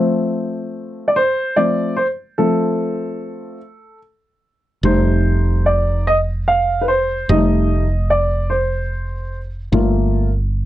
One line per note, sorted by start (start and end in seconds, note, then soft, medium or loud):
0.00 1.12 F3 soft
0.00 1.12 A3 soft
0.00 1.13 C4 soft
1.08 1.15 D5 medium
1.16 1.58 C5 medium
1.56 1.93 F3 soft
1.56 1.93 A3 soft
1.56 1.94 C4 soft
1.56 1.98 D5 medium
1.97 2.06 C5 medium
2.38 3.57 F3 soft
2.38 3.57 A3 soft
2.38 3.57 C4 soft
2.38 3.98 A4 medium
4.83 7.25 F1 medium
4.83 6.03 G3 soft
4.83 6.03 A3 soft
4.83 6.04 D#4 soft
4.83 5.69 C5 medium
5.66 6.08 D5 medium
6.07 6.16 D#5 medium
6.48 6.83 F5 medium
6.81 6.89 B4 soft
6.88 7.26 C5 medium
7.29 9.69 F1 medium
7.29 7.84 G3 soft
7.29 7.84 A3 soft
7.29 7.84 D#4 soft
7.29 8.07 D#5 medium
8.10 8.52 D5 medium
8.50 9.38 C5 medium
9.72 10.65 G1 medium
9.72 10.26 A3 soft
9.72 10.27 A#3 soft
9.72 10.27 F4 medium